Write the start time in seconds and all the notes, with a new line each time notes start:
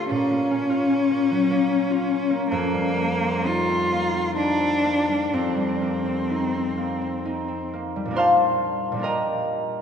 Already playing: A3 A#3 C4 D4 F4
0.10 A#2 C#4
0.31 A#3
0.51 C#4
0.70 F4
0.90 C#4
1.11 A#3
1.31 F#3
1.51 A#3
1.71 C#4
1.91 F4
2.11 C#4
2.30 A#3
2.50 F2 A#3
2.74 G3
2.97 A#3
3.23 C4
3.46 D#4 F4
3.70 C4
3.92 A#3
4.13 C4
4.36 D4 D#4
4.60 C4
4.84 A#3
5.08 G3
5.33 F2 C4
5.57 G3
5.82 A#3
6.06 C4
6.30 D#4
6.54 C4
6.77 A#3
7.02 C4
7.25 D#4
7.48 C4
7.73 A#3
7.96 G3
8.05 A#2 G3
8.11 A#3 D4
8.15 F4 C5 F5 A5 C6
8.92 A#2 G3
8.96 A#3 D4
9.01 F4 A#4 D#5 G5 A#5